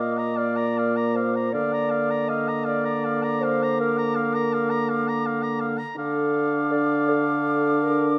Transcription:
Already playing: bassoon A#2, french horn A#3, flute D6
0.00 clarinet D#5, oboe F5
0.18 oboe A#5
0.37 clarinet D5, oboe F5
0.57 oboe A#5
0.78 oboe F5
0.97 oboe A#5
1.14 clarinet C5, oboe F5
1.36 oboe A#5
1.53 bassoon D3, french horn A#3, clarinet D5, oboe F5, flute D6
1.73 oboe A#5
1.90 oboe F5
2.11 oboe A#5
2.28 clarinet D#5, oboe F5
2.49 oboe A#5
2.65 clarinet D5, oboe F5
2.85 oboe A#5
3.05 oboe F5
3.23 oboe A#5
3.41 clarinet C5, oboe F5
3.63 oboe A#5
3.80 clarinet A#4, oboe F5
3.98 oboe A#5
4.16 oboe F5
4.35 oboe A#5
4.53 oboe F5
4.70 oboe A#5
4.89 oboe F5
5.09 oboe A#5
5.26 oboe F5
5.43 oboe A#5
5.60 oboe F5
5.78 oboe A#5
5.96 bassoon D3, french horn D4, clarinet A4, oboe F5, flute D6
6.72 clarinet D5
7.09 clarinet A4
7.83 clarinet A#4

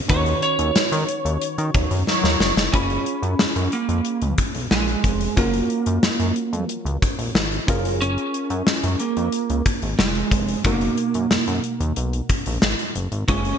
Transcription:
0.08 analog synth bass D#2, synth keys D#3 C#4 D#4 F#4 B4, lead electric guitar C#5, kick, closed hi-hat
0.26 closed hi-hat
0.42 lead electric guitar C#5, closed hi-hat
0.59 analog synth bass D#2, closed hi-hat
0.75 analog synth bass D#3, snare, tambourine
0.92 analog synth bass D#3, closed hi-hat
1.08 closed hi-hat
1.25 analog synth bass D#2, closed hi-hat
1.42 closed hi-hat
1.58 analog synth bass D#3, closed hi-hat
1.74 analog synth bass D#2, analog polysynth F#3 D#4 C#5, kick, closed hi-hat
1.91 analog synth bass F#2, closed hi-hat
2.07 analog polysynth F#3 D#4 C#5, snare
2.23 analog synth bass D#2, snare
2.40 analog synth bass F#1, snare
2.56 analog synth bass F1, snare
2.73 analog synth bass F#1, synth keys C#4 F4 G#4 B5, lead electric guitar C#4, kick, closed hi-hat
2.90 closed hi-hat
3.06 closed hi-hat
3.22 analog synth bass F#2, closed hi-hat
3.39 analog synth bass F#2, snare
3.56 analog synth bass F#2, closed hi-hat
3.72 lead electric guitar A#3, closed hi-hat
3.89 analog synth bass F2, closed hi-hat
4.05 closed hi-hat
4.22 analog synth bass C#2, closed hi-hat
4.38 kick, closed hi-hat
4.55 analog synth bass B1, closed hi-hat
4.71 analog synth bass A#1, lead electric guitar G#3, snare
4.88 closed hi-hat
5.04 analog synth bass F1, kick, closed hi-hat
5.21 closed hi-hat
5.36 analog synth bass F#1, lead electric guitar A#3, synth keys C#4 F4 F#4 A#4, kick, closed hi-hat
5.54 closed hi-hat
5.70 closed hi-hat
5.86 analog synth bass F#2, closed hi-hat
6.03 analog synth bass F#2, snare
6.20 analog synth bass F#2, closed hi-hat
6.36 closed hi-hat
6.53 analog synth bass F2, closed hi-hat
6.69 closed hi-hat
6.85 analog synth bass C#2, closed hi-hat
7.02 kick, closed hi-hat
7.19 analog synth bass A#1, closed hi-hat
7.35 analog synth bass G#1, snare
7.52 closed hi-hat
7.67 analog synth bass F#1, synth keys C#4 F4 G#4 A#4, kick, closed hi-hat
7.85 closed hi-hat
8.01 lead electric guitar C#4, closed hi-hat
8.18 closed hi-hat
8.34 closed hi-hat
8.50 analog synth bass F#2, closed hi-hat
8.67 analog synth bass F#2, snare
8.83 analog synth bass F#2, closed hi-hat
9.00 lead electric guitar A#3, closed hi-hat
9.17 analog synth bass F2, closed hi-hat
9.32 closed hi-hat
9.50 analog synth bass C#2, closed hi-hat
9.66 kick, closed hi-hat
9.82 analog synth bass G#1, closed hi-hat
9.99 analog synth bass F1, lead electric guitar G#3, snare
10.15 closed hi-hat
10.31 analog synth bass F1, kick, closed hi-hat
10.48 closed hi-hat
10.64 analog synth bass F#1, synth keys B2 D#4 F#4 A#4, lead electric guitar A#3, kick, closed hi-hat
10.81 closed hi-hat
10.97 closed hi-hat
11.14 analog synth bass F#2, closed hi-hat
11.31 analog synth bass F#2, snare
11.48 analog synth bass F#2, closed hi-hat
11.64 closed hi-hat
11.80 analog synth bass D#2, closed hi-hat
11.96 analog synth bass B1, closed hi-hat
12.13 closed hi-hat
12.29 analog synth bass A#1, kick, closed hi-hat
12.46 analog synth bass A#1, closed hi-hat
12.62 analog synth bass G#1, snare
12.79 closed hi-hat
12.95 analog synth bass F#1, closed hi-hat
13.12 analog synth bass G#1, closed hi-hat
13.28 analog synth bass F#1, synth keys G#3 C#4 F4 G#4, lead electric guitar C#4, kick, closed hi-hat
13.45 closed hi-hat

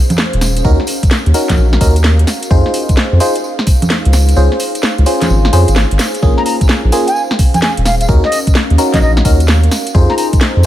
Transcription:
Already playing: ambient pad C#4 G#4 C5 F5
0.10 closed hi-hat, tambourine, high conga
0.18 snare, tambourine
0.33 sub bass D#1, closed hi-hat
0.41 ambient pad F#4 A#4 F5, snare, open hi-hat, tambourine
0.56 closed hi-hat, tambourine
0.65 sub bass D#2, fm electric piano C#4 D#4 F#4 A#4, kick, tambourine
0.80 snare
0.87 open hi-hat, tambourine
1.03 kick, closed hi-hat, tambourine
1.11 snare, tambourine
1.26 sub bass D#2, closed hi-hat
1.34 fm electric piano C#4 D#4 F#4 A#4, open hi-hat, tambourine
1.49 kick, snare, closed hi-hat, tambourine, high conga
1.57 sub bass A#1, tambourine
1.73 snare
1.81 sub bass D#2, fm electric piano C#4 D#4 F#4 A#4, kick, open hi-hat, tambourine
1.96 closed hi-hat, tambourine
2.04 snare, tambourine
2.19 closed hi-hat
2.27 ambient pad D#4 G#4 C5, snare, open hi-hat, tambourine
2.43 closed hi-hat, tambourine
2.51 sub bass F2, fm electric piano D#4 F4 G#4 C5, kick, tambourine
2.66 snare
2.74 open hi-hat, tambourine
2.89 kick, closed hi-hat, tambourine
2.97 snare, tambourine
3.12 sub bass F2
3.20 fm electric piano D#4 F4 G#4 C5, open hi-hat, tambourine
3.36 closed hi-hat, tambourine
3.44 tambourine
3.59 snare
3.67 kick, open hi-hat, tambourine
3.82 closed hi-hat, tambourine, high conga
3.90 snare, tambourine
4.05 sub bass C#2, closed hi-hat
4.13 ambient pad D#4, snare, open hi-hat, tambourine
4.29 closed hi-hat, tambourine
4.37 sub bass C#2, fm electric piano C#4 F4 G#4 C5, tambourine
4.52 snare
4.60 open hi-hat, tambourine
4.75 closed hi-hat, tambourine
4.83 snare, tambourine
4.98 sub bass C#2, closed hi-hat
5.06 fm electric piano C#4 F4 G#4 C5, open hi-hat, tambourine
5.21 snare, closed hi-hat, tambourine, high conga
5.30 sub bass G#1, tambourine
5.45 snare
5.53 sub bass F2, fm electric piano C#4 F4 G#4 C5, open hi-hat, tambourine
5.68 sub bass G#1, closed hi-hat, tambourine
5.76 snare, tambourine
5.91 sub bass G#1, closed hi-hat
5.99 snare, open hi-hat, tambourine
6.14 closed hi-hat, tambourine
6.22 sub bass A#1, fm electric piano A#3 C#4 F4 G#4, ambient pad C#4, kick, tambourine
6.38 flute A#5, snare
6.46 flute A#5, open hi-hat, tambourine
6.61 kick, closed hi-hat, tambourine
6.69 snare, tambourine
6.84 sub bass A#1
6.92 fm electric piano A#3 C#4 F4 G#4, open hi-hat, tambourine
7.07 flute G#5, closed hi-hat, tambourine
7.16 tambourine
7.31 snare
7.39 kick, open hi-hat, tambourine
7.54 flute G#5, closed hi-hat, tambourine, high conga
7.62 flute G#5, snare, tambourine
7.77 sub bass D#1, closed hi-hat
7.85 ambient pad F#4 A#4, flute F5, snare, open hi-hat, tambourine
8.00 flute F5, closed hi-hat, tambourine
8.08 sub bass D#2, fm electric piano C#4 D#4 F#4 A#4, kick, tambourine
8.24 flute D#5, snare
8.32 open hi-hat, tambourine
8.47 kick, closed hi-hat, tambourine
8.55 snare, tambourine
8.70 sub bass D#2, closed hi-hat
8.78 fm electric piano C#4 D#4 F#4 A#4, open hi-hat, tambourine
8.94 flute D#5, kick, snare, closed hi-hat, tambourine, high conga
9.01 sub bass A#1, flute D#5, tambourine
9.17 snare
9.25 sub bass D#2, fm electric piano C#4 D#4 F#4 A#4, kick, open hi-hat, tambourine
9.40 closed hi-hat, tambourine
9.47 snare, tambourine
9.63 closed hi-hat
9.71 ambient pad D#4 F4 G#4 C5, snare, open hi-hat, tambourine
9.87 closed hi-hat, tambourine
9.95 sub bass F2, fm electric piano D#4 F4 G#4 C5, kick, tambourine
10.10 flute A#5, snare
10.18 flute A#5, open hi-hat, tambourine
10.33 kick, closed hi-hat, tambourine
10.41 snare, tambourine
10.56 sub bass F2

